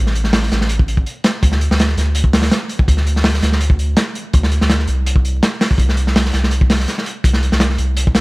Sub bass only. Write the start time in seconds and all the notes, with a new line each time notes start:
Already playing: A1
0.52 A1
1.43 D2
1.70 D2
1.97 D2
2.88 D2
3.42 D2
4.34 D2
4.61 D2
4.88 C2
5.78 C2
6.33 C2
7.24 C2
7.52 C2
7.79 C2